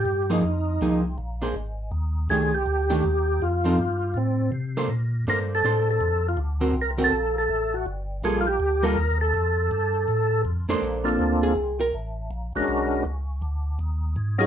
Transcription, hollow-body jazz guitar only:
0.30 F3 A#3 D#4 G#4
0.82 F3 A#3 D#4 G#4
1.42 A#3 D4 G#4 C5
2.30 D#3 A3 D4 G4
2.90 D#3 A3 D4 G4
3.64 F3 C4 D#4 A4
4.77 A#3 D4 A4 C5
5.28 A#3 D4 A4 C5
5.64 D4 A4 C5
6.61 D3 C4 F#4 A#4
6.98 D3 C4 F#4 A#4
8.24 G3 A#3 F4 A4
8.83 G3 A#3 F4 A4
10.69 A#3 D4 A4 C5
11.43 G#4
11.80 A#4
14.41 G#4

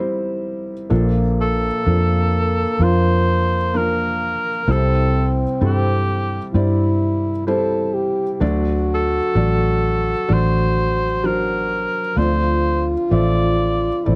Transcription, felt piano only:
Already playing: C2 C3 G3 C4 E4 A#4 C5
0.90 A#1 A#2 F3 A#3 D4 A4
1.85 F3 A#3 D4 A4
2.80 F3 A#3 D4 F4
3.73 F3 A#3 D4 A#4
4.67 C2 C3 G3 C4 E4 C5
5.61 G3 C4 E4 A4
6.54 G3 C4 E4 D5
7.47 G3 C4 E4 C5
8.40 D2 D3 F#3 D4 A4 D5
9.35 F#3 D4 A4 D5
10.29 F#3 D4 A4 D5
11.23 F#3 D4 F#4 C5
12.16 D2 D3 F3 C4 A4 D5
13.10 F3 C4 A4 E5
14.05 F3 C4 A4 D5

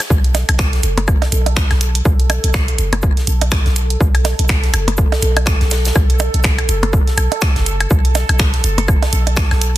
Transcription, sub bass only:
0.10 B1
0.49 B1
0.83 F#1
1.32 B1
1.71 B1
2.05 B1
2.44 B1
2.79 F#1
3.27 B1
3.66 B1
4.01 B1
4.39 B1
4.74 F#1
5.22 B1
5.61 B1
5.96 B1
6.34 B1
6.69 F#1
7.17 B1
7.56 F#1
7.91 B1
8.29 B1
8.64 F#1
9.13 B1
9.51 B1

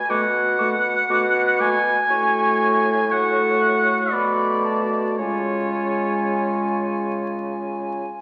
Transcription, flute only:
0.10 D6
0.58 D6
1.10 D6
1.58 D6
2.10 C#6
3.09 C#6
4.13 B5
4.65 A5
5.20 G#5

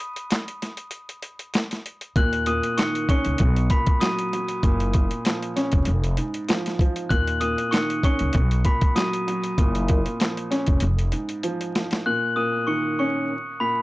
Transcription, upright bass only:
2.16 D#2
3.26 C#2
3.40 B1
4.63 F#1
5.73 F1
5.87 F1
7.11 D#2
8.21 C#2
8.35 B1
9.58 F#1
10.68 F1
10.82 F1

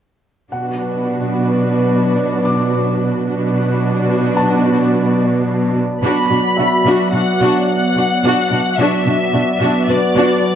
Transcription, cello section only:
0.52 B2
3.27 B2
6.02 B2
6.31 B2
6.58 B2
6.85 B2
7.13 B2
7.40 B2
7.96 B2
8.23 B2
8.51 B2
8.78 B2
9.05 B2
9.33 B2
9.61 B2
9.88 B2
10.16 B2

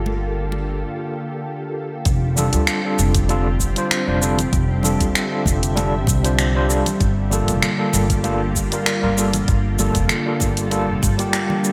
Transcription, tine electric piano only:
Already playing: G3 A#3 F4 A4
2.36 G3 D4 F4 A4
2.85 G3 D4 F4 A4
3.29 G3 D4 F4 A4
3.76 G3 D4 F4 C5
4.07 G3 D4 F4 C5
4.21 G3 D4 F4 A4
4.83 G3 D4 F4 A4
5.31 G3 D4 F4 A4
5.75 G3 D4 F4 A4
6.24 G3 D4 F4 C5
6.55 G3 D4 F4 C5
6.68 G3 D4 F4 A4
7.30 G3 A#3 F4 A4
7.78 G3 A#3 F4 A4
8.23 G3 A#3 F4 A4
8.72 G3 A#3 F4 A#4
9.02 G3 A#3 F4 A#4
9.17 G3 A#3 F4 A4
9.79 G3 A#3 F4 A4
10.26 G3 A#3 F4 A4
10.71 G3 A#3 F4 A4
11.18 G3 A#3 F4 G4

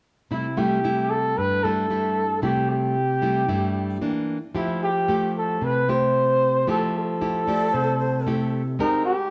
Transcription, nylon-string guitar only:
0.31 C3 G3 A3 E4
0.57 G3 A3 E4
0.84 G3 A3 E4
1.38 G2
1.65 G3 A3 E4
1.90 G3 A3 E4
2.42 C3 G3 A3 E4
3.22 G3 A3 E4
3.48 G2 G3 A3 E4
4.01 E3 A#3 D4
4.55 F3 A3 E4 G4
5.08 A3 E4 G4
5.61 C3
5.89 A3 E4 G4
6.67 F3 A3 E4 G4
7.21 A3 E4 G4
7.47 A3 E4 G4
7.74 C3
8.27 A3 E4 G4
8.79 G#3 C4 G4 A#4

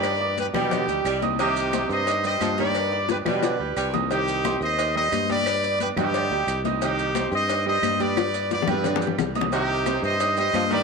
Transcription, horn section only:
Already playing: B4 D5
0.39 G4 B4
0.56 D#4 G4
1.41 D#4 G4
1.92 C5 D#5
2.26 C5 D#5
2.60 B4 D5
3.10 G4 B4
3.28 G4 B4
4.12 D#4 G4
4.63 C5 D#5
4.97 C5 D#5
5.31 B4 D5
5.81 G4 B4
5.98 D#4 G4
6.83 D#4 G4
7.34 C5 D#5
7.68 C5 D#5
8.01 B4 D5
8.52 B4 D5
8.69 G4 B4
9.55 D#4 G4
10.05 C5 D#5
10.39 C5 D#5
10.73 B4 D5

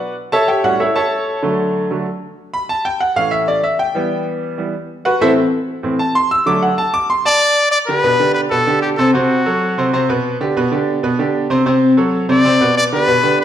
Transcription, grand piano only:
Already playing: F#4 B4 D5 F#5
0.32 A4 C#5 E5 A5
0.48 G4 C#5 E5 G5
0.63 A2 G3 C#4 F#4 F#5
0.80 E4 A4 C#5 E5
0.96 A4 C#5 E5 A5
1.43 D3 F#3 A3
1.91 D3 F#3 A3
2.54 B5
2.69 A5
2.85 G5
3.00 F#5
3.16 A2 E3 C#4 F5
3.31 E5
3.48 D5
3.64 E5
3.79 G5
3.95 E3 G3 B3
4.58 E3 G3 B3
5.05 F#4 B4 F#5
5.21 A2 E3 C4 E4 A4 C5 E5
5.83 A2 E3 C4
5.99 A5
6.15 C6
6.31 E6
6.46 D3 F#3 A3 D6
6.62 F#5
6.78 A5
6.94 D6
7.10 C6
7.25 A5
7.89 D3 D4 G4
8.04 B2 B3 B4
8.19 D3 D4 G4
8.51 B2 B3 B4
8.67 D3 D4 G4
8.99 C3 C4 C5
9.14 C3 C4 C5
9.46 F#3 F#4 A4
9.78 C3 C4 C5
9.93 C3 C4 C5
10.09 B2 B3 B4
10.41 D3 D4 G4
10.57 B2 B3 B4
10.72 D3 D4 G4
11.03 B2 B3 B4
11.19 D3 D4 G4
11.50 C3 C4 C5
11.66 C3 C4 C5
11.97 F#3 F#4 A4
12.29 C3 C4 C5
12.45 C3 C4 C5
12.61 B2 B3 B4
12.93 D3 D4 G4
13.08 B2 B3 B4
13.23 D3 D4 G4

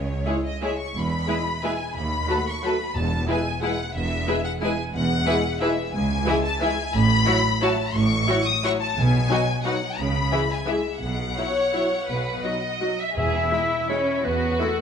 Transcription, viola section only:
0.27 G#3 E4
0.61 G#3 E4
1.28 G#3 E4
1.63 G#3 E4
2.28 F#3 F#4
2.63 F#3 F#4
3.27 G#3 E4
3.62 G#3 E4
4.27 G#3 E4
4.61 G#3 E4
5.27 E3 E4
5.61 E3 E4
6.26 E3 E4
6.61 E3 E4
7.27 F#3 E4
7.62 F#3 E4
8.27 F#3 E4
8.64 F#3 E4
9.30 F#3 D#4
9.65 F#3 D#4
10.32 E3 E4
10.66 E3 E4
11.38 F#3 E4
11.74 F#3 E4
12.44 F#3 F#4
12.81 F#3 F#4
13.51 G#3 E4
13.90 G#3 E4
14.59 G#3 E4

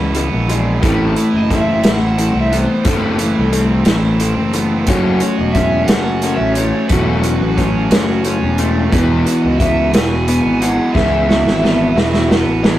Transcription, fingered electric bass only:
Already playing: C#2
0.33 A#1
0.83 A1
1.34 F#1
1.85 A1
2.34 C2
2.86 F#1
3.38 C2
3.87 A1
4.37 F#1
4.87 F#1
5.38 E1
5.88 F#1
6.39 A1
6.91 E1
7.41 A1
7.91 F#1
8.42 E1
8.92 E1
9.45 C#2
9.94 E1
10.45 G#1
10.95 C#2
11.46 G#1
11.95 E1
12.46 A1

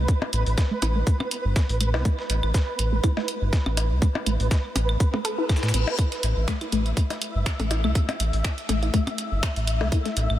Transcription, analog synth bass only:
0.33 A1
0.46 A1
0.82 A1
1.45 G1
1.69 A1
1.94 C2
2.30 A1
2.43 A1
2.79 A1
3.42 G1
3.66 A1
3.91 C2
4.27 A1
4.40 A1
4.76 A1
5.63 A2
5.74 A1
6.23 A1
6.37 A1
6.72 A1
7.35 G1
7.60 A1
7.84 C2
8.20 A1
8.33 A1
8.69 A1
9.32 G1
9.56 A1
9.81 C2
10.17 A1
10.30 A1

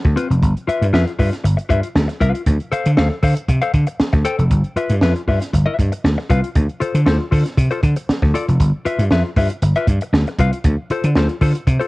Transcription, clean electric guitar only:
0.04 muted clean electric guitar stroke
0.16 C4 F4 B4
0.30 muted clean electric guitar stroke
0.67 F4 B4 E5
0.93 F4 B4 E5
1.07 muted clean electric guitar stroke
1.19 F4 B4 E5
1.32 muted clean electric guitar stroke
1.44 muted clean electric guitar stroke
1.57 muted clean electric guitar stroke
1.69 F4 B4 E5
1.83 muted clean electric guitar stroke
2.08 muted clean electric guitar stroke
2.21 F4 B4 F5
2.34 muted clean electric guitar stroke
2.72 A4 C5 F5
2.97 A4 C5 F5
3.11 muted clean electric guitar stroke
3.23 A4 C5 F5
3.49 muted clean electric guitar stroke
3.62 A4 C5 F5
3.87 muted clean electric guitar stroke
4.13 muted clean electric guitar stroke
4.25 A4 C5 G5
4.39 muted clean electric guitar stroke
4.76 F4 B4 E5
5.02 F4 B4 E5
5.16 muted clean electric guitar stroke
5.28 F4 B4 E5
5.41 muted clean electric guitar stroke
5.53 muted clean electric guitar stroke
5.66 F4 B4 E5
5.78 muted clean electric guitar stroke
5.92 muted clean electric guitar stroke
6.18 muted clean electric guitar stroke
6.29 F4 B4 F5
6.43 muted clean electric guitar stroke
6.80 F4 A4 C5
7.05 F4 A4 C5
7.19 muted clean electric guitar stroke
7.31 F4 A4 C5
7.45 muted clean electric guitar stroke
7.57 muted clean electric guitar stroke
7.71 F4 A4 C5
7.82 muted clean electric guitar stroke
7.96 muted clean electric guitar stroke
8.22 muted clean electric guitar stroke
8.34 F4 A4 D5
8.48 muted clean electric guitar stroke
8.85 F4 B4 E5
9.11 F4 B4 E5
9.25 muted clean electric guitar stroke
9.37 F4 B4 E5
9.51 muted clean electric guitar stroke
9.63 muted clean electric guitar stroke
9.76 F4 B4 E5
10.02 muted clean electric guitar stroke
10.28 muted clean electric guitar stroke
10.39 F4 B4 F5
10.53 muted clean electric guitar stroke
10.91 F4 A4 C5
11.16 F4 A4 C5
11.30 muted clean electric guitar stroke
11.41 F4 A4 C5
11.54 muted clean electric guitar stroke
11.67 muted clean electric guitar stroke
11.79 F4 A4 C5

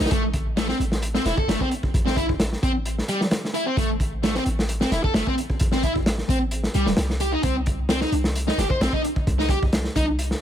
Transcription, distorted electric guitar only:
0.00 D#4
0.11 A3
0.57 A3
0.69 C4
1.15 C4
1.26 E4
1.38 A4
1.49 A3
1.61 C4
2.06 C4
2.17 E4
2.63 C4
3.09 G3
3.54 E4
3.66 C4
3.77 A3
4.23 A3
4.35 C4
4.81 C4
4.92 E4
5.04 A4
5.14 A3
5.27 C4
5.72 C4
5.84 E4
6.29 C4
6.75 G3
7.21 G4
7.33 D#4
7.43 C4
7.90 C4
8.02 D#4
8.47 D#4
8.58 G4
8.70 C5
8.81 C4
8.93 D#4
9.39 D#4
9.50 G4
9.96 D#4

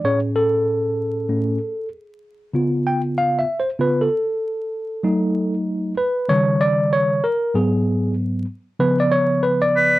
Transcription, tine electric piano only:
0.04 A2 C#4 G#4 C#5
0.36 A4
1.28 A2 A3 C#4
2.54 C#3 B3 F4
2.87 G5
3.18 F5
3.39 E5
3.60 C5
3.79 C#3 B3 F4 B4
4.01 A4
5.03 F#3 A3 D#4
5.97 B4
6.29 C#3 D#3 G3 C#5
6.61 D5
6.93 C#5
7.24 A#4
7.54 G#2 F#3 B3 G#4
8.79 C#3 F3 B3 B4
9.00 D5
9.11 C#5
9.43 B4
9.62 D5

